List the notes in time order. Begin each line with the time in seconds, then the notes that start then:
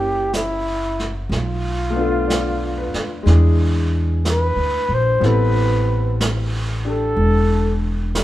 Already playing: F#1 F#3 A#3 C#4 E4 G4
0.33 E4, brush sweep, snare, hi-hat pedal
0.99 snare
1.29 B1, brush sweep, snare
1.34 F4
1.90 A3 B3
1.96 D4 F4
2.01 A4
2.28 D5, brush sweep, snare, hi-hat pedal
2.78 B4
2.94 muted upright bass stroke, snare
3.23 E2 G#3 D4, brush sweep, snare
3.27 E4 G#4
4.25 brush sweep, snare, hi-hat pedal
4.31 B4
4.56 D2
4.89 A#1
4.94 C5
5.20 A1 G3 B3 C4, brush sweep, snare
5.24 E4 A4 B4
6.21 brush sweep, snare, hi-hat pedal
6.85 D4 G4 A4
6.89 A4
7.16 E1, brush sweep
8.15 G4, brush sweep, snare, hi-hat pedal